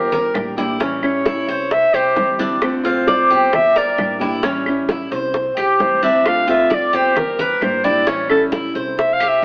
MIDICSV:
0, 0, Header, 1, 7, 480
1, 0, Start_track
1, 0, Tempo, 453858
1, 851, Time_signature, 4, 2, 24, 8
1, 9991, End_track
2, 0, Start_track
2, 0, Title_t, "Clarinet"
2, 0, Program_c, 0, 71
2, 0, Note_on_c, 0, 70, 86
2, 611, Note_off_c, 0, 70, 0
2, 1094, Note_on_c, 0, 73, 95
2, 1820, Note_on_c, 0, 76, 106
2, 1836, Note_off_c, 0, 73, 0
2, 2053, Note_on_c, 0, 72, 101
2, 2069, Note_off_c, 0, 76, 0
2, 2533, Note_off_c, 0, 72, 0
2, 3022, Note_on_c, 0, 72, 92
2, 3751, Note_on_c, 0, 76, 109
2, 3767, Note_off_c, 0, 72, 0
2, 3990, Note_on_c, 0, 74, 92
2, 4005, Note_off_c, 0, 76, 0
2, 4462, Note_off_c, 0, 74, 0
2, 5897, Note_on_c, 0, 67, 87
2, 6146, Note_on_c, 0, 72, 82
2, 6162, Note_off_c, 0, 67, 0
2, 6375, Note_off_c, 0, 72, 0
2, 6381, Note_on_c, 0, 76, 98
2, 6633, Note_on_c, 0, 77, 104
2, 6648, Note_off_c, 0, 76, 0
2, 6863, Note_off_c, 0, 77, 0
2, 6874, Note_on_c, 0, 76, 97
2, 7129, Note_on_c, 0, 74, 82
2, 7145, Note_off_c, 0, 76, 0
2, 7350, Note_on_c, 0, 72, 93
2, 7365, Note_off_c, 0, 74, 0
2, 7599, Note_on_c, 0, 70, 82
2, 7615, Note_off_c, 0, 72, 0
2, 7826, Note_off_c, 0, 70, 0
2, 7833, Note_on_c, 0, 71, 93
2, 8070, Note_on_c, 0, 72, 88
2, 8086, Note_off_c, 0, 71, 0
2, 8294, Note_on_c, 0, 74, 98
2, 8310, Note_off_c, 0, 72, 0
2, 8551, Note_on_c, 0, 73, 86
2, 8567, Note_off_c, 0, 74, 0
2, 8774, Note_off_c, 0, 73, 0
2, 8780, Note_on_c, 0, 69, 92
2, 8922, Note_off_c, 0, 69, 0
2, 9501, Note_on_c, 0, 76, 90
2, 9664, Note_on_c, 0, 77, 96
2, 9680, Note_off_c, 0, 76, 0
2, 9820, Note_on_c, 0, 76, 91
2, 9836, Note_off_c, 0, 77, 0
2, 9991, Note_off_c, 0, 76, 0
2, 9991, End_track
3, 0, Start_track
3, 0, Title_t, "Cuban tres"
3, 0, Program_c, 1, 25
3, 0, Note_on_c, 1, 67, 67
3, 113, Note_off_c, 1, 67, 0
3, 128, Note_on_c, 1, 70, 76
3, 595, Note_off_c, 1, 70, 0
3, 612, Note_on_c, 1, 64, 76
3, 845, Note_off_c, 1, 64, 0
3, 847, Note_on_c, 1, 61, 67
3, 1315, Note_off_c, 1, 61, 0
3, 1327, Note_on_c, 1, 64, 67
3, 1562, Note_off_c, 1, 64, 0
3, 1571, Note_on_c, 1, 72, 77
3, 2037, Note_off_c, 1, 72, 0
3, 2052, Note_on_c, 1, 67, 75
3, 2518, Note_off_c, 1, 67, 0
3, 2531, Note_on_c, 1, 62, 85
3, 2998, Note_off_c, 1, 62, 0
3, 3011, Note_on_c, 1, 65, 86
3, 3245, Note_off_c, 1, 65, 0
3, 3253, Note_on_c, 1, 74, 66
3, 3486, Note_off_c, 1, 74, 0
3, 3495, Note_on_c, 1, 67, 70
3, 3960, Note_off_c, 1, 67, 0
3, 3975, Note_on_c, 1, 70, 75
3, 4440, Note_off_c, 1, 70, 0
3, 4453, Note_on_c, 1, 64, 77
3, 4686, Note_off_c, 1, 64, 0
3, 4692, Note_on_c, 1, 61, 74
3, 5159, Note_off_c, 1, 61, 0
3, 5175, Note_on_c, 1, 64, 68
3, 5407, Note_off_c, 1, 64, 0
3, 5412, Note_on_c, 1, 72, 69
3, 5879, Note_off_c, 1, 72, 0
3, 5889, Note_on_c, 1, 67, 81
3, 6357, Note_off_c, 1, 67, 0
3, 6373, Note_on_c, 1, 62, 78
3, 6839, Note_off_c, 1, 62, 0
3, 6849, Note_on_c, 1, 65, 73
3, 7084, Note_off_c, 1, 65, 0
3, 7087, Note_on_c, 1, 74, 68
3, 7323, Note_off_c, 1, 74, 0
3, 7329, Note_on_c, 1, 67, 73
3, 7797, Note_off_c, 1, 67, 0
3, 7818, Note_on_c, 1, 70, 86
3, 8281, Note_off_c, 1, 70, 0
3, 8292, Note_on_c, 1, 64, 71
3, 8525, Note_off_c, 1, 64, 0
3, 8535, Note_on_c, 1, 61, 73
3, 9000, Note_off_c, 1, 61, 0
3, 9013, Note_on_c, 1, 64, 72
3, 9246, Note_off_c, 1, 64, 0
3, 9256, Note_on_c, 1, 72, 63
3, 9720, Note_off_c, 1, 72, 0
3, 9733, Note_on_c, 1, 67, 83
3, 9991, Note_off_c, 1, 67, 0
3, 9991, End_track
4, 0, Start_track
4, 0, Title_t, "Nylon-string guitar"
4, 0, Program_c, 2, 24
4, 356, Note_on_c, 2, 55, 51
4, 362, Note_on_c, 2, 58, 49
4, 370, Note_on_c, 2, 62, 60
4, 373, Note_on_c, 2, 67, 51
4, 588, Note_off_c, 2, 67, 0
4, 594, Note_off_c, 2, 55, 0
4, 597, Note_off_c, 2, 58, 0
4, 597, Note_off_c, 2, 62, 0
4, 601, Note_on_c, 2, 67, 78
4, 609, Note_on_c, 2, 62, 69
4, 616, Note_on_c, 2, 55, 60
4, 616, Note_on_c, 2, 58, 65
4, 833, Note_off_c, 2, 55, 0
4, 837, Note_off_c, 2, 67, 0
4, 841, Note_off_c, 2, 58, 0
4, 841, Note_off_c, 2, 62, 0
4, 841, Note_on_c, 2, 52, 68
4, 846, Note_on_c, 2, 55, 65
4, 851, Note_on_c, 2, 61, 76
4, 857, Note_on_c, 2, 64, 69
4, 1068, Note_off_c, 2, 64, 0
4, 1077, Note_off_c, 2, 52, 0
4, 1078, Note_off_c, 2, 61, 0
4, 1079, Note_off_c, 2, 55, 0
4, 1081, Note_on_c, 2, 64, 78
4, 1090, Note_on_c, 2, 61, 78
4, 1098, Note_on_c, 2, 55, 66
4, 1794, Note_off_c, 2, 55, 0
4, 1794, Note_off_c, 2, 64, 0
4, 1802, Note_off_c, 2, 61, 0
4, 2278, Note_on_c, 2, 52, 51
4, 2287, Note_on_c, 2, 55, 51
4, 2289, Note_on_c, 2, 60, 53
4, 2294, Note_on_c, 2, 64, 58
4, 2510, Note_off_c, 2, 64, 0
4, 2513, Note_off_c, 2, 60, 0
4, 2514, Note_off_c, 2, 55, 0
4, 2516, Note_off_c, 2, 52, 0
4, 2523, Note_on_c, 2, 64, 77
4, 2526, Note_on_c, 2, 60, 73
4, 2527, Note_on_c, 2, 55, 72
4, 2536, Note_on_c, 2, 52, 62
4, 2758, Note_off_c, 2, 64, 0
4, 2759, Note_off_c, 2, 52, 0
4, 2760, Note_off_c, 2, 60, 0
4, 2761, Note_off_c, 2, 55, 0
4, 2763, Note_on_c, 2, 50, 71
4, 2772, Note_on_c, 2, 57, 83
4, 2775, Note_on_c, 2, 60, 85
4, 2782, Note_on_c, 2, 65, 75
4, 2986, Note_off_c, 2, 65, 0
4, 2996, Note_off_c, 2, 60, 0
4, 2999, Note_off_c, 2, 50, 0
4, 2999, Note_on_c, 2, 65, 73
4, 3003, Note_off_c, 2, 57, 0
4, 3009, Note_on_c, 2, 60, 72
4, 3016, Note_on_c, 2, 57, 68
4, 3717, Note_off_c, 2, 65, 0
4, 3722, Note_off_c, 2, 60, 0
4, 3725, Note_off_c, 2, 57, 0
4, 4206, Note_on_c, 2, 55, 59
4, 4216, Note_on_c, 2, 58, 51
4, 4220, Note_on_c, 2, 62, 54
4, 4223, Note_on_c, 2, 67, 52
4, 4425, Note_off_c, 2, 67, 0
4, 4434, Note_off_c, 2, 62, 0
4, 4438, Note_on_c, 2, 67, 80
4, 4441, Note_off_c, 2, 55, 0
4, 4441, Note_off_c, 2, 58, 0
4, 4446, Note_on_c, 2, 62, 72
4, 4454, Note_on_c, 2, 58, 70
4, 4457, Note_on_c, 2, 55, 60
4, 4676, Note_off_c, 2, 67, 0
4, 4678, Note_off_c, 2, 55, 0
4, 4681, Note_off_c, 2, 62, 0
4, 4685, Note_off_c, 2, 58, 0
4, 4686, Note_on_c, 2, 52, 75
4, 4691, Note_on_c, 2, 55, 74
4, 4699, Note_on_c, 2, 61, 65
4, 4704, Note_on_c, 2, 64, 70
4, 4920, Note_off_c, 2, 52, 0
4, 4923, Note_off_c, 2, 55, 0
4, 4927, Note_off_c, 2, 61, 0
4, 4929, Note_off_c, 2, 64, 0
4, 4942, Note_on_c, 2, 64, 71
4, 4951, Note_on_c, 2, 61, 68
4, 4959, Note_on_c, 2, 55, 64
4, 5646, Note_off_c, 2, 55, 0
4, 5648, Note_off_c, 2, 64, 0
4, 5653, Note_off_c, 2, 61, 0
4, 6129, Note_on_c, 2, 52, 50
4, 6133, Note_on_c, 2, 55, 48
4, 6141, Note_on_c, 2, 60, 49
4, 6147, Note_on_c, 2, 64, 57
4, 6359, Note_off_c, 2, 64, 0
4, 6362, Note_off_c, 2, 52, 0
4, 6364, Note_off_c, 2, 55, 0
4, 6368, Note_off_c, 2, 60, 0
4, 6372, Note_on_c, 2, 64, 68
4, 6382, Note_on_c, 2, 60, 65
4, 6385, Note_on_c, 2, 55, 61
4, 6389, Note_on_c, 2, 52, 56
4, 6603, Note_off_c, 2, 64, 0
4, 6609, Note_off_c, 2, 60, 0
4, 6610, Note_off_c, 2, 52, 0
4, 6610, Note_off_c, 2, 55, 0
4, 6614, Note_on_c, 2, 50, 68
4, 6619, Note_on_c, 2, 57, 75
4, 6625, Note_on_c, 2, 60, 70
4, 6628, Note_on_c, 2, 65, 86
4, 6830, Note_off_c, 2, 65, 0
4, 6838, Note_off_c, 2, 60, 0
4, 6842, Note_on_c, 2, 65, 81
4, 6845, Note_off_c, 2, 50, 0
4, 6847, Note_off_c, 2, 57, 0
4, 6851, Note_on_c, 2, 60, 73
4, 6863, Note_on_c, 2, 57, 62
4, 7558, Note_off_c, 2, 65, 0
4, 7563, Note_off_c, 2, 60, 0
4, 7565, Note_off_c, 2, 57, 0
4, 8041, Note_on_c, 2, 55, 52
4, 8052, Note_on_c, 2, 58, 56
4, 8055, Note_on_c, 2, 62, 54
4, 8058, Note_on_c, 2, 67, 60
4, 8273, Note_off_c, 2, 67, 0
4, 8278, Note_off_c, 2, 55, 0
4, 8282, Note_off_c, 2, 62, 0
4, 8283, Note_off_c, 2, 58, 0
4, 8286, Note_on_c, 2, 67, 67
4, 8294, Note_on_c, 2, 62, 69
4, 8299, Note_on_c, 2, 58, 57
4, 8303, Note_on_c, 2, 55, 55
4, 8515, Note_off_c, 2, 55, 0
4, 8520, Note_off_c, 2, 67, 0
4, 8524, Note_off_c, 2, 58, 0
4, 8524, Note_off_c, 2, 62, 0
4, 8526, Note_on_c, 2, 52, 67
4, 8528, Note_on_c, 2, 55, 61
4, 8537, Note_on_c, 2, 61, 75
4, 8541, Note_on_c, 2, 64, 76
4, 8754, Note_off_c, 2, 64, 0
4, 8760, Note_off_c, 2, 52, 0
4, 8761, Note_off_c, 2, 55, 0
4, 8765, Note_off_c, 2, 61, 0
4, 8767, Note_on_c, 2, 64, 75
4, 8777, Note_on_c, 2, 61, 73
4, 8783, Note_on_c, 2, 55, 64
4, 9479, Note_off_c, 2, 55, 0
4, 9480, Note_off_c, 2, 64, 0
4, 9485, Note_off_c, 2, 61, 0
4, 9991, End_track
5, 0, Start_track
5, 0, Title_t, "Upright bass"
5, 0, Program_c, 3, 32
5, 0, Note_on_c, 3, 31, 98
5, 326, Note_off_c, 3, 31, 0
5, 363, Note_on_c, 3, 33, 89
5, 1502, Note_off_c, 3, 33, 0
5, 1565, Note_on_c, 3, 36, 86
5, 2015, Note_off_c, 3, 36, 0
5, 2047, Note_on_c, 3, 36, 73
5, 2273, Note_off_c, 3, 36, 0
5, 2284, Note_on_c, 3, 38, 82
5, 3423, Note_off_c, 3, 38, 0
5, 3489, Note_on_c, 3, 31, 91
5, 4169, Note_off_c, 3, 31, 0
5, 4210, Note_on_c, 3, 33, 92
5, 5346, Note_off_c, 3, 33, 0
5, 5407, Note_on_c, 3, 36, 101
5, 5857, Note_off_c, 3, 36, 0
5, 5886, Note_on_c, 3, 36, 69
5, 6113, Note_off_c, 3, 36, 0
5, 6128, Note_on_c, 3, 38, 86
5, 7265, Note_off_c, 3, 38, 0
5, 7330, Note_on_c, 3, 31, 97
5, 8009, Note_off_c, 3, 31, 0
5, 8058, Note_on_c, 3, 33, 89
5, 9189, Note_off_c, 3, 33, 0
5, 9254, Note_on_c, 3, 36, 93
5, 9931, Note_off_c, 3, 36, 0
5, 9991, End_track
6, 0, Start_track
6, 0, Title_t, "Muted nylon-string guitar strokes"
6, 1802, Note_on_c, 9, 29, 52
6, 1907, Note_off_c, 9, 29, 0
6, 3726, Note_on_c, 9, 29, 63
6, 3832, Note_off_c, 9, 29, 0
6, 5656, Note_on_c, 9, 29, 52
6, 5762, Note_off_c, 9, 29, 0
6, 7562, Note_on_c, 9, 29, 56
6, 7668, Note_off_c, 9, 29, 0
6, 9488, Note_on_c, 9, 29, 60
6, 9593, Note_off_c, 9, 29, 0
6, 9991, End_track
7, 0, Start_track
7, 0, Title_t, "Drums"
7, 131, Note_on_c, 9, 63, 31
7, 131, Note_on_c, 9, 64, 68
7, 135, Note_on_c, 9, 60, 36
7, 237, Note_off_c, 9, 63, 0
7, 237, Note_off_c, 9, 64, 0
7, 241, Note_off_c, 9, 60, 0
7, 364, Note_on_c, 9, 75, 57
7, 371, Note_on_c, 9, 60, 34
7, 371, Note_on_c, 9, 61, 87
7, 372, Note_on_c, 9, 63, 74
7, 470, Note_off_c, 9, 75, 0
7, 477, Note_off_c, 9, 60, 0
7, 477, Note_off_c, 9, 61, 0
7, 478, Note_off_c, 9, 63, 0
7, 614, Note_on_c, 9, 63, 82
7, 720, Note_off_c, 9, 63, 0
7, 853, Note_on_c, 9, 60, 66
7, 862, Note_on_c, 9, 63, 33
7, 958, Note_off_c, 9, 60, 0
7, 967, Note_off_c, 9, 63, 0
7, 1088, Note_on_c, 9, 75, 66
7, 1090, Note_on_c, 9, 60, 33
7, 1101, Note_on_c, 9, 63, 34
7, 1194, Note_off_c, 9, 75, 0
7, 1195, Note_off_c, 9, 60, 0
7, 1207, Note_off_c, 9, 63, 0
7, 1330, Note_on_c, 9, 60, 57
7, 1335, Note_on_c, 9, 63, 100
7, 1436, Note_off_c, 9, 60, 0
7, 1441, Note_off_c, 9, 63, 0
7, 1569, Note_on_c, 9, 60, 29
7, 1579, Note_on_c, 9, 63, 33
7, 1675, Note_off_c, 9, 60, 0
7, 1685, Note_off_c, 9, 63, 0
7, 1811, Note_on_c, 9, 60, 65
7, 1817, Note_on_c, 9, 63, 34
7, 1917, Note_off_c, 9, 60, 0
7, 1923, Note_off_c, 9, 63, 0
7, 2046, Note_on_c, 9, 60, 32
7, 2048, Note_on_c, 9, 75, 69
7, 2055, Note_on_c, 9, 63, 33
7, 2152, Note_off_c, 9, 60, 0
7, 2154, Note_off_c, 9, 75, 0
7, 2161, Note_off_c, 9, 63, 0
7, 2289, Note_on_c, 9, 60, 35
7, 2289, Note_on_c, 9, 61, 81
7, 2294, Note_on_c, 9, 63, 76
7, 2394, Note_off_c, 9, 60, 0
7, 2394, Note_off_c, 9, 61, 0
7, 2400, Note_off_c, 9, 63, 0
7, 2534, Note_on_c, 9, 63, 74
7, 2640, Note_off_c, 9, 63, 0
7, 2769, Note_on_c, 9, 60, 67
7, 2771, Note_on_c, 9, 75, 61
7, 2773, Note_on_c, 9, 63, 35
7, 2875, Note_off_c, 9, 60, 0
7, 2877, Note_off_c, 9, 75, 0
7, 2878, Note_off_c, 9, 63, 0
7, 3008, Note_on_c, 9, 60, 39
7, 3017, Note_on_c, 9, 63, 32
7, 3114, Note_off_c, 9, 60, 0
7, 3123, Note_off_c, 9, 63, 0
7, 3249, Note_on_c, 9, 60, 50
7, 3259, Note_on_c, 9, 63, 97
7, 3355, Note_off_c, 9, 60, 0
7, 3365, Note_off_c, 9, 63, 0
7, 3493, Note_on_c, 9, 60, 31
7, 3500, Note_on_c, 9, 63, 34
7, 3598, Note_off_c, 9, 60, 0
7, 3606, Note_off_c, 9, 63, 0
7, 3733, Note_on_c, 9, 60, 64
7, 3736, Note_on_c, 9, 75, 68
7, 3738, Note_on_c, 9, 63, 32
7, 3738, Note_on_c, 9, 64, 75
7, 3839, Note_off_c, 9, 60, 0
7, 3841, Note_off_c, 9, 75, 0
7, 3844, Note_off_c, 9, 63, 0
7, 3844, Note_off_c, 9, 64, 0
7, 3977, Note_on_c, 9, 60, 36
7, 3979, Note_on_c, 9, 63, 34
7, 4082, Note_off_c, 9, 60, 0
7, 4085, Note_off_c, 9, 63, 0
7, 4213, Note_on_c, 9, 60, 33
7, 4213, Note_on_c, 9, 61, 82
7, 4214, Note_on_c, 9, 63, 84
7, 4215, Note_on_c, 9, 75, 62
7, 4319, Note_off_c, 9, 60, 0
7, 4319, Note_off_c, 9, 61, 0
7, 4320, Note_off_c, 9, 63, 0
7, 4321, Note_off_c, 9, 75, 0
7, 4456, Note_on_c, 9, 63, 86
7, 4561, Note_off_c, 9, 63, 0
7, 4686, Note_on_c, 9, 60, 71
7, 4699, Note_on_c, 9, 63, 37
7, 4791, Note_off_c, 9, 60, 0
7, 4805, Note_off_c, 9, 63, 0
7, 4929, Note_on_c, 9, 60, 41
7, 4931, Note_on_c, 9, 75, 70
7, 4936, Note_on_c, 9, 63, 36
7, 5034, Note_off_c, 9, 60, 0
7, 5037, Note_off_c, 9, 75, 0
7, 5042, Note_off_c, 9, 63, 0
7, 5169, Note_on_c, 9, 60, 61
7, 5171, Note_on_c, 9, 63, 102
7, 5274, Note_off_c, 9, 60, 0
7, 5277, Note_off_c, 9, 63, 0
7, 5412, Note_on_c, 9, 60, 35
7, 5417, Note_on_c, 9, 63, 35
7, 5518, Note_off_c, 9, 60, 0
7, 5523, Note_off_c, 9, 63, 0
7, 5648, Note_on_c, 9, 60, 64
7, 5658, Note_on_c, 9, 63, 30
7, 5754, Note_off_c, 9, 60, 0
7, 5764, Note_off_c, 9, 63, 0
7, 5894, Note_on_c, 9, 75, 62
7, 5895, Note_on_c, 9, 60, 34
7, 5897, Note_on_c, 9, 63, 33
7, 5999, Note_off_c, 9, 75, 0
7, 6001, Note_off_c, 9, 60, 0
7, 6003, Note_off_c, 9, 63, 0
7, 6133, Note_on_c, 9, 63, 76
7, 6136, Note_on_c, 9, 60, 33
7, 6136, Note_on_c, 9, 61, 86
7, 6238, Note_off_c, 9, 63, 0
7, 6241, Note_off_c, 9, 60, 0
7, 6241, Note_off_c, 9, 61, 0
7, 6377, Note_on_c, 9, 63, 71
7, 6483, Note_off_c, 9, 63, 0
7, 6614, Note_on_c, 9, 75, 71
7, 6617, Note_on_c, 9, 60, 66
7, 6618, Note_on_c, 9, 63, 38
7, 6720, Note_off_c, 9, 75, 0
7, 6723, Note_off_c, 9, 60, 0
7, 6724, Note_off_c, 9, 63, 0
7, 6857, Note_on_c, 9, 60, 36
7, 6861, Note_on_c, 9, 63, 33
7, 6962, Note_off_c, 9, 60, 0
7, 6967, Note_off_c, 9, 63, 0
7, 7094, Note_on_c, 9, 63, 90
7, 7099, Note_on_c, 9, 60, 50
7, 7200, Note_off_c, 9, 63, 0
7, 7205, Note_off_c, 9, 60, 0
7, 7339, Note_on_c, 9, 60, 31
7, 7341, Note_on_c, 9, 63, 33
7, 7445, Note_off_c, 9, 60, 0
7, 7447, Note_off_c, 9, 63, 0
7, 7569, Note_on_c, 9, 75, 60
7, 7579, Note_on_c, 9, 60, 70
7, 7582, Note_on_c, 9, 63, 33
7, 7582, Note_on_c, 9, 64, 82
7, 7674, Note_off_c, 9, 75, 0
7, 7685, Note_off_c, 9, 60, 0
7, 7688, Note_off_c, 9, 63, 0
7, 7688, Note_off_c, 9, 64, 0
7, 7814, Note_on_c, 9, 63, 35
7, 7814, Note_on_c, 9, 64, 72
7, 7815, Note_on_c, 9, 60, 36
7, 7919, Note_off_c, 9, 63, 0
7, 7919, Note_off_c, 9, 64, 0
7, 7921, Note_off_c, 9, 60, 0
7, 8052, Note_on_c, 9, 75, 62
7, 8059, Note_on_c, 9, 60, 34
7, 8059, Note_on_c, 9, 61, 76
7, 8059, Note_on_c, 9, 63, 79
7, 8158, Note_off_c, 9, 75, 0
7, 8165, Note_off_c, 9, 60, 0
7, 8165, Note_off_c, 9, 61, 0
7, 8165, Note_off_c, 9, 63, 0
7, 8298, Note_on_c, 9, 63, 89
7, 8404, Note_off_c, 9, 63, 0
7, 8534, Note_on_c, 9, 60, 65
7, 8539, Note_on_c, 9, 63, 34
7, 8640, Note_off_c, 9, 60, 0
7, 8645, Note_off_c, 9, 63, 0
7, 8773, Note_on_c, 9, 75, 69
7, 8776, Note_on_c, 9, 63, 35
7, 8777, Note_on_c, 9, 60, 35
7, 8879, Note_off_c, 9, 75, 0
7, 8882, Note_off_c, 9, 63, 0
7, 8883, Note_off_c, 9, 60, 0
7, 9010, Note_on_c, 9, 63, 112
7, 9018, Note_on_c, 9, 60, 53
7, 9116, Note_off_c, 9, 63, 0
7, 9124, Note_off_c, 9, 60, 0
7, 9256, Note_on_c, 9, 63, 34
7, 9265, Note_on_c, 9, 60, 31
7, 9362, Note_off_c, 9, 63, 0
7, 9371, Note_off_c, 9, 60, 0
7, 9492, Note_on_c, 9, 63, 31
7, 9505, Note_on_c, 9, 60, 67
7, 9598, Note_off_c, 9, 63, 0
7, 9611, Note_off_c, 9, 60, 0
7, 9731, Note_on_c, 9, 63, 37
7, 9733, Note_on_c, 9, 75, 73
7, 9743, Note_on_c, 9, 60, 36
7, 9837, Note_off_c, 9, 63, 0
7, 9839, Note_off_c, 9, 75, 0
7, 9849, Note_off_c, 9, 60, 0
7, 9991, End_track
0, 0, End_of_file